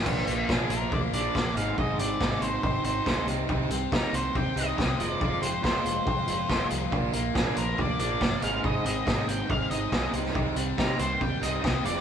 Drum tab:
CC |x---------------|----------------|----------------|----------------|
HH |--x---x---x---x-|--x---x---x---x-|--x---x---x---x-|--x---x---x---x-|
SD |----o-------o---|----o-------o---|----o-------o---|----o-------o---|
BD |o---o---o---o---|o---o---o---o---|o---o---o---o---|o---o---o---o---|

CC |----------------|----------------|----------------|
HH |--x---x---x---x-|--x---x---x---x-|--x---x---x---x-|
SD |----o-------o---|----o-------o--o|----o-------o--o|
BD |o---o---o---o---|o---o---o---o---|o---o---o---o---|